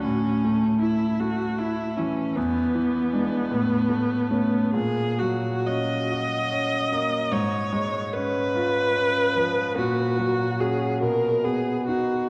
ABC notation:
X:1
M:6/8
L:1/8
Q:3/8=49
K:Amix
V:1 name="Viola"
C2 E F E C | B,6 | [K:F#] G F d4 | c2 B4 |
F2 G A G F |]
V:2 name="Grand piano"
A,, A, E A, E E, | E,, E, [^G,D] A,, A, [A,C] | [K:F#] A,, F, C F C A, | G,, G, C E C E, |
A,, F, [CF] B,, B, [DF] |]